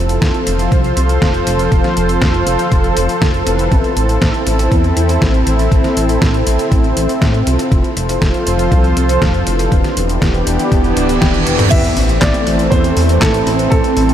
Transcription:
Already playing: F1 F3 C4 F4 A4 C5
0.09 closed hi-hat
0.22 F1, kick, snare, closed hi-hat
0.34 closed hi-hat
0.47 F1 C4 F4 A4 C5, closed hi-hat
0.59 closed hi-hat
0.72 C2, kick, closed hi-hat
0.84 closed hi-hat
0.97 C2 C4 F4 A4 C5, closed hi-hat
1.09 closed hi-hat
1.22 F1, kick, snare, closed hi-hat
1.34 closed hi-hat
1.47 F1 C4 F4 A4 C5, closed hi-hat
1.59 closed hi-hat
1.72 F1, kick, closed hi-hat
1.84 snare, closed hi-hat
1.97 F1 C4 F4 A4 C5, closed hi-hat
2.09 closed hi-hat
2.22 F1, kick, snare, closed hi-hat
2.34 closed hi-hat
2.47 F1 C4 F4 A4 C5, closed hi-hat
2.59 closed hi-hat
2.72 F1, kick, closed hi-hat
2.84 closed hi-hat
2.97 F1 C4 F4 A4 C5, closed hi-hat
3.09 closed hi-hat
3.22 F1, kick, snare, closed hi-hat
3.34 C4 F4 A4 C5, closed hi-hat
3.47 F1 C4 E4 A4 B4, closed hi-hat
3.59 closed hi-hat
3.72 A1 C4 E4, kick, closed hi-hat
3.84 closed hi-hat
3.97 A1 C4 E4 A4 C5, closed hi-hat
4.09 closed hi-hat
4.22 A1, kick, snare, closed hi-hat
4.34 closed hi-hat
4.47 A1 C4 E4 A4 C5, closed hi-hat
4.59 closed hi-hat
4.72 E2, kick, closed hi-hat
4.84 closed hi-hat
4.97 E2 C4 E4 A4 C5, closed hi-hat
5.09 closed hi-hat
5.22 A1, kick, snare, closed hi-hat
5.34 closed hi-hat
5.47 A1 C4 E4 A4 C5, closed hi-hat
5.59 closed hi-hat
5.72 A1, kick, closed hi-hat
5.84 snare, closed hi-hat
5.97 A1 C4 E4 A4 C5, closed hi-hat
6.09 closed hi-hat
6.22 A1, kick, snare, closed hi-hat
6.34 closed hi-hat
6.47 A1 C4 E4 A4 C5, closed hi-hat
6.59 closed hi-hat
6.72 A1, kick, closed hi-hat
6.84 closed hi-hat
6.97 A1 C4 E4 A4 C5, closed hi-hat
7.09 closed hi-hat
7.22 A2, kick, snare, closed hi-hat
7.34 closed hi-hat
7.47 C2 C4 F4 A4 C5, closed hi-hat
7.59 closed hi-hat
7.72 F1 F3 F4 A4 C5, kick, closed hi-hat
7.84 closed hi-hat
7.97 F1 C4 F4 A4 C5, closed hi-hat
8.09 closed hi-hat
8.22 F1, kick, snare, closed hi-hat
8.34 closed hi-hat
8.47 F1 C4 F4 A4 C5, closed hi-hat
8.59 closed hi-hat
8.72 C2, kick, closed hi-hat
8.84 closed hi-hat
8.97 C2 C4 F4 A4 C5, closed hi-hat
9.09 closed hi-hat
9.22 F1, kick, snare, closed hi-hat
9.34 closed hi-hat
9.47 F1 D4 E4 G4 B4, closed hi-hat
9.59 closed hi-hat
9.72 E1 E3 B3 D4 G4, kick, closed hi-hat
9.84 snare, closed hi-hat
9.97 E1 D4 E4 G4 B4, closed hi-hat
10.09 closed hi-hat
10.22 E1, kick, snare, closed hi-hat
10.34 closed hi-hat
10.47 E1 D4 E4 G4 B4, closed hi-hat
10.59 closed hi-hat
10.72 E1, kick, closed hi-hat, reverse cymbal
10.84 closed hi-hat
10.97 D1 D4 E4 G4 B4, closed hi-hat
11.09 closed hi-hat
11.20 E1 G4, kick, snare, closed hi-hat, high tom
11.34 D4 E4 G4 B4, closed hi-hat, high tom
11.47 E1 C4 E4 A4 B4, closed hi-hat
11.59 closed hi-hat, mid tom
11.70 A1 E3 A3 C4 E5, kick, closed hi-hat, crash, sub drop
11.84 closed hi-hat
11.97 A1 C4 E4 A4 C5, open hi-hat
12.09 closed hi-hat
12.20 A1 D5, kick, snare, clap, closed hi-hat
12.34 closed hi-hat
12.47 A1 C4 E4 A4 C5, open hi-hat
12.59 closed hi-hat
12.70 E2 C5, kick, closed hi-hat
12.84 closed hi-hat
12.97 E2 C4 E4 A4 C5, open hi-hat
13.09 closed hi-hat
13.20 A1 A4, kick, snare, clap, closed hi-hat
13.34 closed hi-hat
13.47 A1 C4 E4 A4 C5, open hi-hat
13.59 closed hi-hat
13.70 A1 G3 A4, kick, closed hi-hat
13.84 closed hi-hat
13.97 A1 C4 E4 A4 C5, open hi-hat
14.09 closed hi-hat

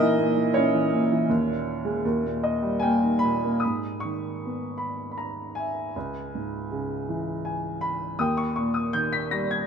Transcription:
Already playing: A#2 E3 D#4 E4 A#4 D#5 E5
0.02 E3
0.19 A#2
0.38 E3
0.54 A#2 C#4 E4 C#5
0.75 E3
0.93 A#2
1.12 E3
1.29 D#2
1.47 A#2
1.85 G#3
2.05 D#2
2.24 A#2
2.43 D#5
2.62 G3
2.79 A#3 G5 G#5
3.03 D#3
3.19 B5
3.24 A#2
3.44 A#3
3.60 B5 D#6
3.65 G#2
4.00 C#6
4.05 D#3
4.45 B3
4.78 B5
5.11 B5
5.18 A#5
5.55 E5 G#5
5.96 C#2
6.35 G#2
6.72 C#3
7.09 E3
7.45 G#5
7.81 B5
8.19 D#2 G5 D#6
8.37 C#6
8.56 A#2 C#6
8.74 D#6
8.93 D#3 G6
9.13 B6
9.31 G3 A#6
9.51 G#6

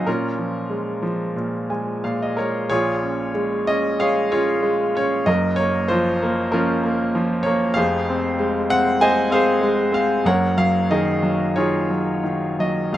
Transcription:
0.06 A#2 C#4 F4 A#4
0.38 F3
0.70 G#3
1.02 F3
1.36 A#2
1.70 G#3 G#5
2.04 A#2 F5
2.22 D#5
2.37 G#3 A#4 C#5
2.70 A#1 A#2 F4 G#4 C#5
3.03 C#4
3.34 G#3
3.67 C#4 D#5
4.00 G#3 G#4 C#5 F5
4.31 C#4 F4 G#4 C#5
4.62 G#3
4.95 C#4 C#5
5.26 F#1 F#2 A#4 D#5
5.56 A#3 C#5
5.88 F3 F4 C5
6.22 A#3
6.52 F3 C#4 F4 A#4
6.83 A#3
7.15 F3
7.43 A#3 C#5
7.74 F1 F2 G#4 C5 F5
8.10 C4
8.39 G#3
8.70 C4 F#5
9.00 G#3 C5 D#5 G#5
9.30 C4 G#4 C5 F5
9.61 G#3
9.92 C4 F5
10.25 F#1 F#2 A#4 C#5 F#5
10.57 F#3 F5
10.90 D#3 G#4 A#4 D#5
11.23 F#3
11.56 D#3 F4 G#4 C#5
11.90 F#3
12.23 D#3
12.59 F#3 D#5
12.92 C#2 F5

